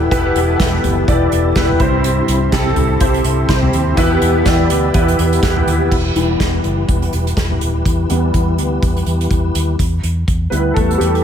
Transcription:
Already playing: B2 E3 B3 E4 G4 A4 B4 D5
0.11 E1 B2 B3 E4 G4 A4 B4, kick, closed hi-hat
0.35 E1, closed hi-hat
0.60 E1 B3 E4 G4 B4, kick, snare, closed hi-hat
0.84 F#1, closed hi-hat, floor tom
1.08 E1 B3 E4 G4 D5, kick, closed hi-hat
1.32 E1, closed hi-hat
1.56 E1 B3 E4 G4 B4, kick, snare, closed hi-hat
1.69 floor tom
1.80 C2 G2 C3 C4 E4 G4 C5, kick, closed hi-hat
2.04 closed hi-hat
2.28 C2, closed hi-hat
2.52 C2 C4 E4 G4 A4, kick, snare, closed hi-hat
2.76 C2, closed hi-hat, floor tom
3.00 C2 C4 E4 G4 C5, kick, closed hi-hat
3.14 closed hi-hat
3.24 C2, closed hi-hat
3.49 C2 C4 E4 G4 C5, kick, snare, closed hi-hat
3.62 floor tom
3.73 D#2, closed hi-hat
3.97 E2 B2 E3 B3 E4 F#4 B4, kick, closed hi-hat
4.03 G4
4.22 E2, closed hi-hat
4.46 E2 B3 E4 G4 D5, kick, snare, closed hi-hat
4.70 D2, closed hi-hat
4.94 E2 B3 E4 G4 B4, kick, closed hi-hat
5.08 closed hi-hat
5.19 E2, closed hi-hat
5.33 closed hi-hat
5.43 E2 B3 E4 G4 B4, kick, snare, closed hi-hat
5.57 floor tom
5.67 D#2, closed hi-hat
5.91 E1 E3 E4 G4 B4, kick, crash
6.15 E1 E3 G3 B3, closed hi-hat
6.40 E1, kick, snare, closed hi-hat
6.64 F#1, closed hi-hat
6.88 E1, kick, closed hi-hat
7.02 closed hi-hat
7.13 E1, closed hi-hat
7.27 closed hi-hat
7.37 E1, kick, snare, closed hi-hat
7.50 floor tom
7.61 D#1, closed hi-hat
7.85 E2, kick, closed hi-hat
8.09 E2 E3 G3 B3, closed hi-hat
8.34 E2, kick, closed hi-hat
8.58 D2, closed hi-hat
8.82 E2, kick, closed hi-hat
8.96 closed hi-hat
9.06 E2, closed hi-hat
9.21 closed hi-hat
9.31 E2, kick, closed hi-hat
9.55 D#2, closed hi-hat
9.79 E2, kick, closed hi-hat
10.03 E2, closed hi-hat
10.28 E2, kick, closed hi-hat
10.50 D2 G3 B3 E4 B4, closed hi-hat
10.74 E2 A3 A4, kick, closed hi-hat
10.91 closed hi-hat
10.98 E2 G3 G4, closed hi-hat
11.15 closed hi-hat

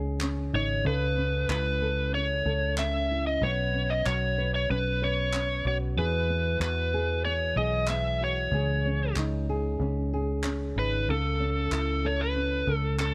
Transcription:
Already playing: C#2 C#3 C#4 D#4 G#4
0.21 C#4, clap
0.53 G#1 D#4 C#5
0.85 C#2 C#3 A4 B4
1.17 C#4
1.49 C#2 E4 B4, clap
1.82 A4
2.14 C#4 C#5
2.45 C#2 A4
2.78 C#4 E5, clap
3.11 E4
3.27 D#5
3.41 B1 B3 B4 C#5
3.74 C#4
3.90 D#5
4.06 B1 F#4 C#5, clap
4.38 B4
4.55 C#5
4.69 B1 C#4 B4
5.02 B4 C#5
5.33 C#4, clap
5.65 B1 F#4 C#5
5.97 E2 E3 G#4 B4
6.30 B3
6.60 E2 F#4 B4, clap
6.94 G#4
7.25 B3 C#5
7.56 B1 G#4 D#5
7.87 B3 E5, clap
8.21 F#4 C#5
8.51 C#2 C#3 G#4
8.85 C#4
9.16 C#2 D#4, clap
9.49 G#4
9.79 C#2 C#4
10.13 G#4
10.44 C#4, clap
10.76 G#1 D#4 B4
11.08 C#2 C#3 A4
11.40 C#4
11.71 C#2 E4 A4, clap
12.05 A4 C#5
12.21 B4
12.36 C#4
12.67 C#2 A4
12.76 A4
12.99 C#4 A4, clap

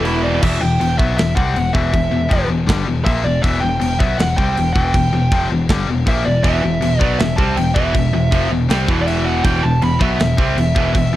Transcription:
Already playing: E1 E2 B2 E3
0.05 E4 E5, crash
0.23 D5
0.42 E1 E2 B2 E3 E5, kick, crash
0.61 E1 E2 B2 G5
0.80 E1 E2 B2, crash
0.98 B1 B2 F#3 B3 E5, kick
1.17 E1 E2 B2 E5, snare, crash
1.35 C2 C3 G3 C4 F#5, kick
1.54 E1 E2 B2, crash
1.73 E1 E2 B2 E3 E5, kick
1.93 E1 E2 B2, kick, crash
2.11 E1 E2 B2
2.29 F1 F2 C3 F3, kick, crash
2.48 E1 E2 B2
2.66 G1 G2 D3 G3, kick, snare, crash
2.86 E1 E2 B2
3.04 A#1 A#2 F3 A#3 E5, kick, crash
3.24 E1 E2 B2 D5
3.42 E1 E2 B2 E3 E5, kick, crash
3.60 E1 E2 B2 G5
3.80 E1 E2 B2, crash
3.99 B1 B2 F#3 B3 E5, kick
4.18 E1 E2 B2 F#5, snare, crash
4.37 C2 C3 G3 C4 G5, kick
4.57 E1 E2 B2, crash
4.73 E1 E2 B2 E3 G5, kick
4.94 E1 E2 B2, kick, crash
5.13 E1 E2 B2
5.32 F1 F2 C3 F3, kick, crash
5.50 E1 E2 B2
5.69 G1 G2 D3 G3, kick, snare, crash
5.88 E1 E2 B2
6.06 A#1 A#2 F3 A#3 E5, kick, crash
6.25 E1 E2 B2 D5
6.43 E1 E2 B2 E3 E5, kick, crash
6.62 E1 E2 B2
6.81 E1 E2 B2, crash
6.99 B1 B2 F#3 B3 D5, kick
7.19 E1 E2 B2 E5, snare, crash
7.36 C2 C3 G3 C4 A5, kick
7.56 E1 E2 B2 G5, crash
7.74 E1 E2 B2 E3 E5, kick
7.94 E1 E2 B2, kick, crash
8.13 E1 E2 B2
8.31 F1 F2 C3 F3, kick, crash
8.50 E1 E2 B2
8.69 C2 C3 G3 C4, snare, crash
8.88 E1 E2 B2 E3, kick
9.02 D5
9.07 E5, crash
9.26 F#5
9.44 E1 E2 B2 E3 G5, kick, crash
9.63 E1 E2 B2 A5
9.82 E1 E2 B2 B5, crash
9.99 B1 B2 F#3 B3 E5, kick
10.19 E1 E2 B2, snare, crash
10.37 C2 C3 G3 C4, kick
10.56 E1 E2 B2, crash
10.75 E1 E2 B2 E3, kick
10.94 E1 E2 B2, kick, crash
11.13 E2

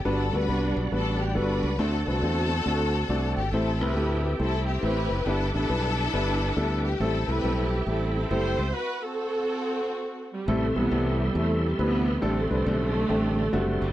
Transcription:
0.05 G1 G2 G3 B3 D4 F#4 A4 B4 D5 F#5 B5
0.32 D2 G3 B3 D4 F#4 A4 B4
0.48 C2 G3 B3 D4 F#4 B4
0.77 B1
0.92 A1 G3 B3 D4 F#4 A4 B4
1.21 G4
1.35 G1 G3 B3 D4 F#4 A4 B4
1.63 C#2
1.78 D2 D3 A3 C4 D4 F#4 A4 C5
2.06 C2 A3 C4 D4 F#4 A4 B4
2.22 E2 A3 C4 D4 F#4 C5
2.66 D2 A3 C4 D4 F#4 A4
3.09 C2 A3 C4 D4 F#4 D5
3.37 G#1 G4
3.52 A1 A2 A3 C4 E4 G4 A4 C5 E5 G5
3.80 C2 A3 C4 E4 G4 A4 B4
3.96 D2 A3 C4 E4 G4 A4
4.39 C2 A3 C4 E4 G4 A4 C5
4.67 G4
4.83 A1 A3 C4 E4 G4 B4 C5
5.10 F#1
5.26 G1 G2 G3 B3 D4 E4 A4 B4 D6
5.54 A1 G3 B3 D4 E4 A4
5.69 B1 G3 B3 D4 E4 B4
6.13 G1 G3 B3 D4 E4 B4
6.56 D2 G3 B3 D4 E4 A4
6.85 G4
7.00 A1 A2 G3 A3 C4 E4 A4
7.28 C2 G3 A3 C4 E4 G4 A4 B4
7.43 B1 G3 A3 C4 E4 A4
7.87 A1 G3 A3 C4 E4 A4
8.15 A4
8.31 F#1 G3 A3 C4 E4 G4 A4 C5
8.58 C#2
8.74 F#4 B4
9.02 C4 F#4 A4
10.33 G3
10.48 A1 A2 C3 E3 G3 A3 C4 E4 A4 E5 C6
10.76 B1 E3 G3 A3 B3 C4 E4 A4
10.91 C2 G3 A3 C4 E4 A4
11.35 E2 C3 E3 G3 A3 C4 E4 A4
11.63 G3
11.79 D2 E3 G3 A3 B3 C4 E4 B4
12.21 A1 A2 D3 G3 A3 C4 D4 A4 D5
12.50 C2 D3 G3 A3 C4 D4 B4
12.66 B1 G3 A3 C4 D4 A4
13.09 A1 G3 A3 C4 D4 G4
13.53 F#1 G3 A3 C4 D4 F#4
13.81 F#1 G3

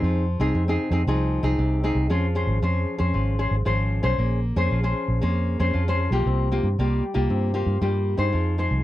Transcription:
Already playing: C4 D#4 G#4
0.02 F2 F3
0.40 C2 C4 D#4 G#4
0.54 F2 C3
0.68 C4 D#4 G#4
0.91 F2 C4 D#4 G#4
1.07 C2 F3 C4 D#4 G#4
1.43 C2 C4 D#4 G#4
1.58 C2 C3
1.83 C4 D#4 G#4
1.95 C2
2.10 F2 F3 C#4 G#4 C5
2.35 C#4 G#4 C5
2.47 G#1
2.62 F2 F3 C#4 G#4 C5
2.98 F2 C#4 G#4 C5
3.14 G#1 F3
3.39 C#4 G#4 C5
3.51 G#1
3.65 G#1 F3 C#4 G#4 C5
4.03 B1 C#4 G#4 C5
4.18 A#1 A#3
4.56 F2 C#4 G#4 C5
4.71 A#1 F3
4.83 C#4 G#4 C5
5.08 A#1
5.21 F2 A#3 C#4 G#4 C5
5.60 F2 C#4 G#4 C5
5.74 F2 F3
5.88 C#4 G#4 C5
6.11 B1 A#3 F4 G4
6.26 C2 C3
6.52 A#3 F4 G4
6.63 G2
6.79 C2 G3 A#3 F4 G4
7.14 C2 A#3 F4 G4
7.30 G2 C3
7.54 A#3 F4 G4
7.66 G2
7.81 G2 G3 A#3 F4 G4
8.17 G2 D#4 G#4 C5
8.32 F2 F3
8.58 D#4 G#4 C5
8.71 C2

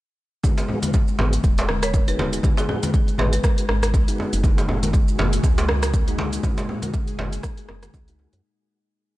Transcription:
0.44 G#3 B3 F#4 G#4, kick, djembe tone, high conga, shaker
0.58 closed hi-hat, djembe slap, muted conga, shaker
0.68 djembe tone, low conga
0.83 G#3 B3 F#4 B4, closed hi-hat, high conga, shaker
0.94 kick, djembe tone, shaker
1.08 muted conga, shaker
1.19 G#1 B3 F#4 G#4, djembe slap, high conga, djembe tone, low conga
1.33 closed hi-hat, shaker
1.44 D#1 G#3, kick, muted conga, djembe tone, shaker
1.58 B3 F#4 G#4, closed hi-hat, djembe slap, shaker
1.69 G#3, cross-stick, high conga, djembe tone
1.83 C#5, cross-stick, closed hi-hat, muted conga, shaker
1.93 G#3, kick, djembe tone, high conga, shaker
2.08 B3 D#4 F#4 G#4 B4, closed hi-hat, shaker
2.19 B4, muted conga, djembe slap, high conga, djembe tone
2.33 D#4, closed hi-hat, shaker
2.43 G#3 B3 F#4 G#4, kick, high conga, djembe tone, shaker
2.57 G#4, closed hi-hat, djembe slap, muted conga, shaker
2.69 G#4, djembe tone, low conga
2.83 G#3 B3 F#4 B4, closed hi-hat, high conga, shaker
2.94 G#3, kick, djembe tone, shaker
3.08 closed hi-hat, muted conga, shaker
3.18 G#1 B3 F#4 G#4 B4, djembe slap, high conga, djembe tone, low conga
3.33 B4, closed hi-hat, shaker
3.44 G#3, kick, cross-stick, muted conga, djembe tone, shaker
3.58 B3 F#4 G#4, closed hi-hat, shaker
3.69 G#1 G#3, cross-stick, djembe tone
3.82 cross-stick, closed hi-hat, muted conga, high conga, shaker
3.94 B1 G#3, kick, djembe tone, shaker
4.08 B3 D#4 F#4 G#4, closed hi-hat, shaker
4.18 muted conga, djembe tone
4.33 F#1 D#4, closed hi-hat, shaker
4.43 A#2 G#3 A#3 F#4 G#4, kick, high conga, djembe tone, shaker
4.58 closed hi-hat, djembe slap, muted conga, shaker
4.68 djembe tone, low conga
4.83 G#3 A#3 F#4 A#4, closed hi-hat, high conga, shaker
4.93 G#3, kick, djembe tone, shaker
5.08 muted conga, shaker
5.18 F#1 A#3 F#4 G#4, djembe slap, djembe tone, high conga, low conga
5.33 closed hi-hat, shaker
5.43 C#2 G#3, kick, muted conga, djembe tone, shaker
5.58 A#3 F#4 G#4, closed hi-hat, djembe slap, shaker
5.68 G#3, cross-stick, djembe tone, high conga
5.82 cross-stick, closed hi-hat, muted conga, shaker
5.94 G#3, kick, high conga, djembe tone, shaker
6.08 A#3 D#4 F#4 G#4, closed hi-hat, shaker
6.18 muted conga, djembe slap, high conga, djembe tone
6.33 D#4, closed hi-hat, shaker
6.43 G#3 A#3 F#4 G#4, kick, high conga, djembe tone, shaker
6.58 closed hi-hat, muted conga, djembe slap, shaker
6.69 djembe tone, low conga
6.82 G#3 A#3 F#4 A#4, closed hi-hat, high conga, shaker
6.94 G#3, kick, djembe tone, shaker
7.08 closed hi-hat, muted conga, shaker
7.19 F#1 A#3 F#4 G#4, djembe slap, high conga, djembe tone, low conga
7.33 closed hi-hat, shaker
7.43 G#3, kick, cross-stick, muted conga, djembe tone, shaker
7.57 A#3 F#4 G#4, closed hi-hat, shaker
7.69 F#1 G#3, cross-stick, djembe tone
7.83 A#3 F#4 G#4, cross-stick, closed hi-hat, muted conga, high conga, shaker
7.94 C#2 G#3 A#3 F#4 G#4, kick, djembe tone, high conga, shaker
8.08 D#4, closed hi-hat, shaker
8.19 muted conga, djembe tone
8.33 F#2 D#4, closed hi-hat, shaker

